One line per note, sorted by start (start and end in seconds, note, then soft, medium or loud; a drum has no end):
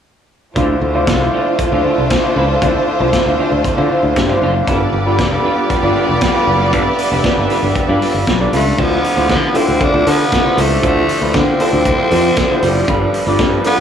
0.55 0.75 D2 loud
0.55 0.82 D3 medium
0.55 4.64 A3 medium
0.55 0.76 D4 medium
0.55 0.82 D4 medium
0.55 0.82 E4 medium
0.55 0.68 F4 medium
0.55 4.64 F4 medium
0.55 0.82 F4 medium
0.55 4.64 C5 medium
0.55 0.67 C5 medium
0.55 0.82 C5 medium
0.55 kick loud
0.55 closed hi-hat medium
0.68 muted clean electric guitar stroke soft
0.81 1.07 D2 medium
0.81 muted clean electric guitar stroke soft
0.94 1.12 D3 medium
0.94 1.06 D4 soft
0.94 1.12 D4 medium
0.94 1.12 E4 medium
0.94 1.06 F4 soft
0.94 1.12 F4 medium
0.94 1.07 C5 medium
0.94 1.13 C5 medium
1.07 1.26 C2 medium
1.07 kick loud
1.07 snare loud
1.07 closed hi-hat medium
1.20 1.54 D3 medium
1.20 1.55 D4 medium
1.20 1.55 E4 medium
1.20 1.55 F4 medium
1.20 1.55 C5 medium
1.20 muted clean electric guitar stroke soft
1.33 1.54 D4 medium
1.33 1.47 F4 medium
1.33 1.45 C5 medium
1.47 muted clean electric guitar stroke soft
1.59 muted clean electric guitar stroke soft
1.59 kick medium
1.59 closed hi-hat medium
1.72 1.81 D2 medium
1.72 2.06 D3 medium
1.72 2.06 D4 medium
1.72 1.84 D4 medium
1.72 2.06 E4 medium
1.72 2.07 F4 medium
1.72 1.84 F4 medium
1.72 2.07 A4 medium
1.72 1.85 C5 medium
1.85 2.01 D4 medium
1.85 1.98 F4 medium
1.85 1.97 C5 medium
1.98 2.07 C2 medium
1.98 muted clean electric guitar stroke soft
2.10 muted clean electric guitar stroke soft
2.10 kick loud
2.10 snare loud
2.10 closed hi-hat medium
2.23 2.49 D3 medium
2.23 2.49 D4 medium
2.23 2.35 D4 soft
2.23 2.49 E4 medium
2.23 2.49 F4 medium
2.23 2.36 F4 soft
2.23 2.36 C5 medium
2.23 2.49 C5 medium
2.36 2.55 C#2 medium
2.36 2.57 D4 medium
2.36 2.49 F4 medium
2.36 2.48 C5 medium
2.50 muted clean electric guitar stroke soft
2.62 2.71 D2 medium
2.62 2.87 D3 medium
2.62 2.88 D4 medium
2.62 2.83 D4 medium
2.62 2.88 E4 medium
2.62 2.75 F4 medium
2.62 2.88 F4 medium
2.62 2.88 C5 medium
2.62 2.74 C5 medium
2.62 kick loud
2.62 closed hi-hat medium
2.75 muted clean electric guitar stroke soft
2.88 muted clean electric guitar stroke soft
3.00 3.10 C2 medium
3.00 3.17 D3 medium
3.00 3.17 D4 medium
3.00 3.12 D4 soft
3.00 3.17 E4 medium
3.00 3.18 F4 medium
3.00 3.13 F4 soft
3.00 3.13 C5 medium
3.00 3.18 C5 medium
3.13 kick loud
3.13 snare loud
3.13 closed hi-hat medium
3.25 3.35 D2 medium
3.25 3.60 D3 medium
3.25 3.60 D4 medium
3.25 3.60 E4 medium
3.25 3.61 F4 medium
3.25 3.61 C5 medium
3.39 3.60 D4 medium
3.39 3.52 F4 medium
3.39 3.51 C5 medium
3.52 3.61 D2 medium
3.52 muted clean electric guitar stroke soft
3.64 muted clean electric guitar stroke soft
3.64 kick loud
3.64 closed hi-hat medium
3.77 4.11 D3 medium
3.77 3.87 D3 medium
3.77 4.12 D4 medium
3.77 3.89 D4 medium
3.77 4.12 E4 medium
3.77 4.12 F4 medium
3.77 3.90 F4 medium
3.77 3.90 C5 medium
3.77 4.12 C5 medium
3.90 4.07 D4 medium
3.90 4.04 F4 medium
3.90 4.03 C5 medium
4.03 4.12 D2 medium
4.03 muted clean electric guitar stroke soft
4.16 4.35 G2 loud
4.16 4.40 D5 medium
4.16 kick medium
4.16 snare loud
4.16 closed hi-hat medium
4.28 4.54 D3 medium
4.28 4.54 D4 medium
4.28 4.41 D4 soft
4.28 4.55 E4 medium
4.28 4.55 F4 medium
4.28 4.42 F4 medium
4.28 4.55 C5 medium
4.28 4.42 C5 medium
4.42 4.60 F#1 medium
4.42 4.62 D4 medium
4.42 4.55 F4 medium
4.42 4.54 C5 medium
4.42 4.66 F5 medium
4.55 muted clean electric guitar stroke medium
4.67 4.86 G1 medium
4.67 4.93 G3 medium
4.67 8.74 G3 medium
4.67 8.75 B3 medium
4.67 4.93 D4 medium
4.67 4.88 D4 medium
4.67 6.71 F4 medium
4.67 4.93 F4 medium
4.67 4.80 F4 medium
4.67 8.75 G4 medium
4.67 4.93 A4 medium
4.67 8.74 B4 medium
4.67 4.93 B4 medium
4.67 4.79 B4 medium
4.67 8.75 D5 medium
4.67 kick medium
4.67 closed hi-hat medium
4.80 muted clean electric guitar stroke soft
4.93 5.19 G1 medium
4.93 muted clean electric guitar stroke soft
5.06 5.23 G3 medium
5.06 5.23 D4 medium
5.06 5.18 D4 soft
5.06 5.23 F4 medium
5.06 5.18 F4 soft
5.06 5.24 A4 medium
5.06 5.18 B4 medium
5.06 5.24 B4 medium
5.19 5.37 F1 medium
5.19 muted clean electric guitar stroke soft
5.19 kick loud
5.19 snare loud
5.19 closed hi-hat medium
5.31 5.65 G3 medium
5.31 5.66 D4 medium
5.31 5.66 F4 medium
5.31 5.66 A4 medium
5.31 5.66 B4 medium
5.31 muted clean electric guitar stroke soft
5.44 5.65 D4 medium
5.44 5.57 F4 medium
5.44 5.56 B4 medium
5.57 muted clean electric guitar stroke soft
5.70 muted clean electric guitar stroke soft
5.70 kick loud
5.70 closed hi-hat medium
5.83 5.92 G1 medium
5.83 6.17 G3 medium
5.83 6.17 D4 medium
5.83 5.94 D4 medium
5.83 6.17 F4 medium
5.83 5.95 F4 medium
5.83 6.17 A4 medium
5.83 5.96 B4 medium
5.83 6.18 D5 medium
5.95 6.12 D4 medium
5.95 6.08 F4 medium
5.95 6.07 B4 medium
6.09 6.18 F1 medium
6.09 muted clean electric guitar stroke soft
6.21 muted clean electric guitar stroke soft
6.21 kick loud
6.21 snare loud
6.21 closed hi-hat medium
6.34 6.60 G3 medium
6.34 6.60 D4 medium
6.34 6.60 F4 medium
6.34 6.61 A4 medium
6.34 6.61 B4 medium
6.34 muted clean electric guitar stroke soft
6.47 6.73 F#1 medium
6.60 muted clean electric guitar stroke soft
6.72 6.82 G1 loud
6.72 6.99 G3 medium
6.72 6.93 D4 medium
6.72 6.99 D4 medium
6.72 6.85 F4 medium
6.72 6.99 F4 medium
6.72 6.99 A4 medium
6.72 6.85 B4 medium
6.72 6.99 B4 medium
6.72 8.77 E5 medium
6.72 kick loud
6.72 closed hi-hat medium
6.86 muted clean electric guitar stroke medium
6.99 muted clean electric guitar stroke soft
6.99 open hi-hat medium
7.11 7.21 F1 medium
7.11 7.29 G3 medium
7.11 7.29 D4 medium
7.11 7.23 D4 soft
7.11 7.24 F4 medium
7.11 7.29 F4 medium
7.11 7.29 A4 medium
7.11 7.24 B4 medium
7.11 7.29 B4 medium
7.24 kick loud
7.24 snare loud
7.24 closed hi-hat medium
7.37 7.47 G1 medium
7.37 7.71 G3 medium
7.37 7.72 D4 medium
7.37 7.72 F4 medium
7.37 7.72 A4 medium
7.37 7.72 B4 medium
7.37 muted clean electric guitar stroke soft
7.50 7.71 D4 medium
7.50 7.63 F4 medium
7.50 7.62 B4 medium
7.50 open hi-hat medium
7.63 7.72 G1 medium
7.63 muted clean electric guitar stroke soft
7.75 muted fingered electric bass stroke soft
7.75 muted clean electric guitar stroke soft
7.75 kick loud
7.75 closed hi-hat medium
7.88 7.98 G2 medium
7.88 8.23 G3 medium
7.88 8.23 D4 medium
7.88 8.01 D4 medium
7.88 8.23 F4 medium
7.88 8.01 F4 medium
7.88 8.23 A4 medium
7.88 8.02 B4 medium
7.88 8.23 D5 medium
8.02 8.18 D4 medium
8.02 8.15 F4 medium
8.02 8.14 B4 medium
8.02 open hi-hat medium
8.14 8.24 G1 medium
8.14 muted clean electric guitar stroke soft
8.27 8.46 B1 loud
8.27 muted clean electric guitar stroke soft
8.27 kick loud
8.27 snare loud
8.27 closed hi-hat medium
8.40 8.65 G3 medium
8.40 8.65 D4 medium
8.40 8.51 D4 soft
8.40 8.66 F4 medium
8.40 8.52 F4 soft
8.40 8.66 A4 medium
8.40 8.53 B4 medium
8.40 8.66 D5 loud
8.52 8.71 C#2 medium
8.52 8.83 A3 medium
8.52 8.73 D4 medium
8.52 8.66 F4 medium
8.52 8.65 B4 medium
8.52 open hi-hat medium
8.66 muted clean electric guitar stroke soft
8.78 8.97 D2 medium
8.78 12.85 C3 medium
8.78 9.04 D3 medium
8.78 12.85 D3 medium
8.78 13.80 F3 medium
8.78 9.59 B3 medium
8.78 9.04 D4 medium
8.78 9.04 E4 medium
8.78 8.99 F4 medium
8.78 9.04 F4 medium
8.78 8.91 A4 medium
8.78 8.90 C5 medium
8.78 9.05 C5 medium
8.78 kick loud
8.78 crash medium
8.78 cowbell soft
8.91 muted clean electric guitar stroke medium
9.03 muted clean electric guitar stroke soft
9.03 open hi-hat medium
9.16 9.31 D2 medium
9.16 9.42 D3 medium
9.16 9.42 D4 medium
9.16 9.43 E4 medium
9.16 9.27 F4 soft
9.16 9.43 F4 medium
9.16 9.28 A4 soft
9.16 9.29 C5 medium
9.16 9.43 C5 medium
9.29 9.48 D3 medium
9.29 muted clean electric guitar stroke soft
9.29 kick loud
9.29 snare loud
9.29 closed hi-hat medium
9.29 cowbell medium
9.42 muted clean electric guitar stroke soft
9.54 9.72 D3 medium
9.54 9.85 C4 loud
9.54 9.72 D4 medium
9.54 9.72 E4 medium
9.54 9.75 F4 medium
9.54 9.73 F4 medium
9.54 9.67 A4 medium
9.54 9.66 C5 medium
9.54 9.73 C5 medium
9.54 open hi-hat medium
9.54 cowbell medium
9.67 9.78 D2 medium
9.67 muted clean electric guitar stroke soft
9.80 10.23 D3 medium
9.80 10.23 D4 medium
9.80 10.10 D4 loud
9.80 10.23 E4 medium
9.80 10.24 F4 medium
9.80 10.24 C5 medium
9.80 muted clean electric guitar stroke soft
9.80 kick loud
9.80 closed hi-hat medium
9.80 cowbell medium
9.93 10.03 D2 medium
9.93 10.05 F4 medium
9.93 10.06 A4 medium
9.93 10.07 C5 medium
10.06 10.25 D3 medium
10.06 10.62 B3 loud
10.06 10.23 F4 medium
10.06 10.19 A4 medium
10.06 10.18 C5 medium
10.06 open hi-hat medium
10.06 cowbell medium
10.20 muted clean electric guitar stroke soft
10.31 muted clean electric guitar stroke soft
10.31 kick loud
10.31 snare medium
10.31 closed hi-hat medium
10.31 cowbell medium
10.44 10.70 D3 medium
10.44 10.71 D4 medium
10.44 10.71 E4 medium
10.44 10.71 F4 medium
10.44 10.71 C5 medium
10.44 muted clean electric guitar stroke soft
10.57 10.76 C#2 medium
10.57 10.85 A3 medium
10.57 10.78 F4 medium
10.57 10.70 A4 medium
10.57 10.69 C5 medium
10.57 open hi-hat medium
10.70 muted clean electric guitar stroke soft
10.82 11.02 D2 loud
10.82 11.09 D3 medium
10.82 11.38 A3 loud
10.82 11.09 D4 medium
10.82 11.09 E4 medium
10.82 11.03 F4 medium
10.82 11.09 F4 medium
10.82 10.95 A4 medium
10.82 10.94 C5 medium
10.82 11.10 C5 medium
10.82 kick loud
10.82 closed hi-hat medium
10.82 cowbell soft
10.96 muted clean electric guitar stroke medium
11.09 muted clean electric guitar stroke soft
11.09 open hi-hat medium
11.21 11.31 D2 medium
11.21 11.47 D3 medium
11.21 11.47 D4 medium
11.21 11.47 E4 medium
11.21 11.48 F4 medium
11.21 11.33 F4 medium
11.21 11.34 A4 soft
11.21 11.48 B4 medium
11.21 11.35 C5 medium
11.34 11.53 D3 medium
11.34 12.66 C4 loud
11.34 kick loud
11.34 snare loud
11.34 closed hi-hat medium
11.34 cowbell medium
11.60 11.77 D3 medium
11.60 11.77 D4 medium
11.60 11.77 E4 medium
11.60 11.81 F4 medium
11.60 11.78 F4 medium
11.60 11.73 A4 medium
11.60 11.78 C5 medium
11.60 11.72 C5 medium
11.60 open hi-hat medium
11.60 cowbell medium
11.73 11.92 D2 medium
11.73 muted clean electric guitar stroke soft
11.85 12.29 D3 medium
11.85 12.29 D4 medium
11.85 12.29 E4 medium
11.85 12.29 F4 medium
11.85 12.29 C5 medium
11.85 muted clean electric guitar stroke soft
11.85 kick medium
11.85 closed hi-hat medium
11.85 cowbell medium
11.98 12.10 F4 medium
11.98 12.10 A4 medium
11.98 12.11 C5 medium
12.11 12.30 F2 medium
12.11 12.28 F4 medium
12.11 12.23 A4 medium
12.11 12.22 C5 medium
12.11 open hi-hat medium
12.11 cowbell medium
12.23 muted clean electric guitar stroke soft
12.36 muted clean electric guitar stroke soft
12.36 kick loud
12.36 snare loud
12.36 closed hi-hat medium
12.36 cowbell medium
12.49 12.75 D3 medium
12.49 12.76 D4 medium
12.49 12.76 E4 medium
12.49 12.61 F4 soft
12.49 12.76 F4 medium
12.49 12.61 A4 medium
12.49 12.62 C5 soft
12.49 12.76 C5 medium
12.62 12.81 F#1 medium
12.62 13.39 G3 medium
12.62 12.83 F4 medium
12.62 12.74 A4 medium
12.62 12.73 C5 medium
12.62 open hi-hat medium
12.75 muted clean electric guitar stroke medium
12.88 13.07 G1 medium
12.88 13.14 G3 medium
12.88 13.80 G3 medium
12.88 13.09 D4 medium
12.88 13.14 D4 medium
12.88 13.00 F4 medium
12.88 13.14 F4 medium
12.88 13.15 A4 medium
12.88 13.80 B4 medium
12.88 12.99 B4 medium
12.88 13.15 B4 medium
12.88 kick loud
12.88 closed hi-hat medium
12.88 cowbell medium
13.01 muted clean electric guitar stroke medium
13.13 muted clean electric guitar stroke soft
13.13 open hi-hat medium
13.26 13.36 G1 medium
13.26 13.53 G3 medium
13.26 13.53 D4 medium
13.26 13.38 D4 soft
13.26 13.39 F4 soft
13.26 13.53 F4 medium
13.26 13.53 A4 medium
13.26 13.39 B4 medium
13.26 13.53 D5 medium
13.39 13.58 G2 loud
13.39 kick loud
13.39 snare medium
13.39 closed hi-hat medium
13.39 cowbell medium
13.52 muted clean electric guitar stroke soft
13.64 13.80 G3 medium
13.64 13.80 B3 loud
13.64 13.80 D4 medium
13.64 13.78 F4 medium
13.64 13.80 F4 medium
13.64 13.80 A4 medium
13.64 13.77 B4 medium
13.64 13.80 B4 loud
13.64 open hi-hat medium
13.64 cowbell medium